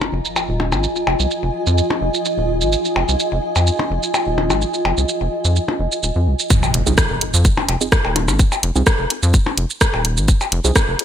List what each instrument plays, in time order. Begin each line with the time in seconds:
Already playing: ambient pad F4 D#5 G#5, impact
0.01 percussion blips
0.13 analog synth bass F1
0.25 shaker
0.36 percussion blips, shaker
0.49 analog synth bass D#1
0.60 percussion blips
0.72 analog synth bass G#1, percussion blips, shaker
0.83 shaker
0.96 shaker
1.07 analog synth bass F1, percussion blips
1.20 analog synth bass C2, shaker
1.31 shaker
1.43 analog synth bass F1
1.67 analog synth bass F2, shaker
1.78 shaker
1.90 percussion blips
2.02 analog synth bass F1
2.14 shaker
2.25 shaker
2.38 analog synth bass D#1
2.61 analog synth bass G#1, shaker
2.72 shaker
2.85 shaker
2.96 analog synth bass F1, percussion blips
3.09 analog synth bass C2, shaker
3.20 shaker
3.32 analog synth bass F1
3.56 analog synth bass F2, percussion blips, shaker
3.67 shaker
3.79 percussion blips
3.91 analog synth bass F1
4.03 shaker
4.14 percussion blips, shaker
4.27 analog synth bass D#1
4.38 percussion blips
4.50 analog synth bass G#1, percussion blips, shaker
4.62 shaker
4.74 shaker
4.85 analog synth bass F1, percussion blips
4.98 analog synth bass C2, shaker
5.09 shaker
5.21 analog synth bass F1
5.45 analog synth bass F2, shaker
5.56 shaker
5.68 percussion blips
5.80 analog synth bass F1
5.92 shaker
6.03 analog synth bass D#1, shaker
6.16 analog synth bass F2
6.27 analog synth bass C2
6.39 shaker
6.50 kick, impact, shaker
6.63 percussion blips, shaker
6.74 analog synth bass F1, closed hi-hat
6.86 analog synth bass C2, synth stab C4 D#4 F4 G#4, shaker
6.98 kick, cross-stick, shaker
7.10 analog synth bass F1
7.21 closed hi-hat
7.34 analog synth bass F2, shaker
7.45 kick, shaker
7.57 percussion blips
7.69 analog synth bass F1, closed hi-hat, percussion blips
7.81 synth stab C4 D#4 F4 G#4, shaker
7.92 kick, cross-stick, shaker
8.05 analog synth bass D#1, percussion blips
8.16 closed hi-hat, percussion blips
8.28 analog synth bass G#1, percussion blips, shaker
8.39 kick, shaker
8.52 percussion blips, shaker
8.63 analog synth bass F1, closed hi-hat
8.76 analog synth bass C2, synth stab C4 D#4 F4 G#4, shaker
8.87 kick, cross-stick, shaker
8.99 analog synth bass F1
9.10 closed hi-hat
9.23 analog synth bass F2, shaker
9.34 kick, shaker
9.46 percussion blips
9.58 analog synth bass F1, closed hi-hat
9.70 shaker
9.81 kick, cross-stick, shaker
9.94 analog synth bass D#1, percussion blips
10.05 closed hi-hat
10.17 analog synth bass G#1, shaker
10.28 kick, shaker
10.41 percussion blips, shaker
10.52 analog synth bass F1, closed hi-hat
10.64 analog synth bass C2, synth stab C4 D#4 F4 G#4, shaker
10.76 kick, cross-stick, shaker
10.88 analog synth bass F1
10.99 closed hi-hat